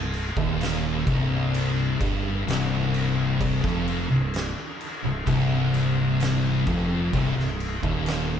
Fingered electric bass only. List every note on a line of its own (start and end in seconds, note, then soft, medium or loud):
0.00 0.33 C1 medium
0.37 1.02 D#1 medium
1.07 1.96 C1 medium
2.01 2.44 G1 loud
2.47 3.59 C1 loud
3.64 4.07 F1 medium
4.11 4.54 C1 medium
5.04 5.25 C1 medium
5.27 6.63 C1 medium
6.67 7.10 F1 loud
7.14 7.35 C1 loud
7.36 7.79 C1 medium
7.83 8.40 D#1 medium